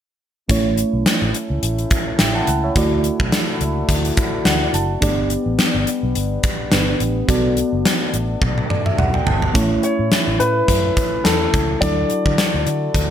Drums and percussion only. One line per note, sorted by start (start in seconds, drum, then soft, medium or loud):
0.49 kick loud
0.49 closed hi-hat medium
0.77 closed hi-hat medium
1.06 snare loud
1.06 closed hi-hat medium
1.34 closed hi-hat medium
1.63 closed hi-hat medium
1.78 closed hi-hat soft
1.91 kick medium
1.91 closed hi-hat medium
2.19 snare loud
2.19 closed hi-hat medium
2.47 closed hi-hat medium
2.76 kick loud
2.76 closed hi-hat medium
3.04 closed hi-hat medium
3.20 kick medium
3.32 snare loud
3.32 closed hi-hat medium
3.61 closed hi-hat medium
3.89 kick medium
3.89 closed hi-hat medium
4.05 closed hi-hat soft
4.17 kick medium
4.17 closed hi-hat medium
4.45 snare loud
4.45 closed hi-hat medium
4.74 closed hi-hat medium
5.02 kick loud
5.02 closed hi-hat medium
5.30 closed hi-hat medium
5.59 snare loud
5.59 closed hi-hat medium
5.87 closed hi-hat medium
6.15 closed hi-hat medium
6.43 kick medium
6.43 closed hi-hat medium
6.72 snare loud
6.72 closed hi-hat medium
7.00 closed hi-hat medium
7.29 kick loud
7.29 closed hi-hat medium
7.57 closed hi-hat medium
7.85 snare loud
7.85 closed hi-hat medium
8.14 closed hi-hat medium
8.42 kick medium
8.42 high tom soft
8.58 high tom soft
8.70 mid tom medium
8.86 mid tom medium
8.99 mid tom medium
9.14 mid tom medium
9.27 floor tom medium
9.42 floor tom medium
9.55 kick loud
9.55 closed hi-hat medium
9.83 closed hi-hat medium
10.12 snare loud
10.12 closed hi-hat medium
10.40 closed hi-hat medium
10.68 kick medium
10.68 closed hi-hat medium
10.97 kick medium
10.97 closed hi-hat medium
11.25 snare loud
11.25 closed hi-hat medium
11.54 kick medium
11.54 closed hi-hat medium
11.82 kick loud
11.82 closed hi-hat medium
12.10 closed hi-hat medium
12.26 kick medium
12.38 snare loud
12.38 closed hi-hat medium
12.67 closed hi-hat medium
12.94 kick medium
12.94 closed hi-hat medium